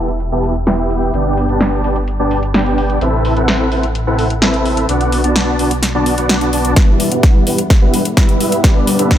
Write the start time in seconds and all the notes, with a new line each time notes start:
Already playing: E1
0.08 closed hi-hat
0.20 closed hi-hat
0.32 B3 E4 G4 E5 A5
0.44 open hi-hat
0.55 closed hi-hat
0.67 B3 E4 G4 E5 G5, snare, closed hi-hat
0.79 closed hi-hat
0.90 open hi-hat
1.02 closed hi-hat
1.14 G1 B3 D4 G4 D5 G5, closed hi-hat
1.37 open hi-hat
1.49 B3 D4 G4 D5 A5, closed hi-hat
1.61 snare, closed hi-hat
1.84 B3 D4 G4 D5 A5, open hi-hat
1.96 closed hi-hat
2.08 closed hi-hat
2.19 B3 D4 G4 D5 A5
2.31 open hi-hat
2.43 closed hi-hat
2.54 B3 D4 G4 D5 G5, snare, closed hi-hat
2.66 closed hi-hat
2.78 open hi-hat
2.90 closed hi-hat
3.01 A1 C4 E4 A4 B4 E5, closed hi-hat
3.25 open hi-hat
3.37 C4 E4 A4 B4 F#5, closed hi-hat
3.48 snare, closed hi-hat
3.72 C4 E4 A4 B4 F#5, open hi-hat
3.83 closed hi-hat
3.95 closed hi-hat
4.07 C4 E4 A4 B4 F#5
4.19 open hi-hat
4.30 closed hi-hat
4.42 C4 E4 A4 B4 E5, snare, closed hi-hat
4.54 closed hi-hat
4.66 open hi-hat
4.77 closed hi-hat
4.89 B1 B3 D4 F#4 D5 F#5, closed hi-hat
5.01 closed hi-hat
5.12 open hi-hat
5.24 B3 D4 F#4 D5 A5, closed hi-hat
5.36 snare, closed hi-hat
5.59 B3 D4 F#4 D5 A5, open hi-hat
5.71 closed hi-hat
5.83 snare, closed hi-hat
5.94 B3 D4 F#4 D5 A5
6.06 open hi-hat
6.18 B3 D4 F#4 D5 F#5, closed hi-hat
6.29 snare, closed hi-hat
6.41 B3 D4 F#4 D5 A5, closed hi-hat
6.53 B3 D4 F#4 D5 A5, open hi-hat
6.65 closed hi-hat
6.76 E1 G3 B3 E4 B4 E5, kick, snare, closed hi-hat
7.00 open hi-hat
7.12 E1 G3 B3 E4 B4 F#5, closed hi-hat
7.23 kick, snare, closed hi-hat
7.47 E1 G3 B3 E4 B4 F#5, open hi-hat
7.58 closed hi-hat
7.70 kick, snare, closed hi-hat
7.82 E1 G3 B3 E4 B4 F#5
7.94 open hi-hat
8.05 closed hi-hat
8.17 E1 G3 B3 E4 B4 E5, kick, snare, closed hi-hat
8.29 closed hi-hat
8.40 open hi-hat
8.52 closed hi-hat
8.64 G1 G3 B3 D4 B4 D5, kick, snare, closed hi-hat
8.87 open hi-hat
8.99 G1 G3 B3 D4 B4 E5, closed hi-hat
9.11 kick, snare, closed hi-hat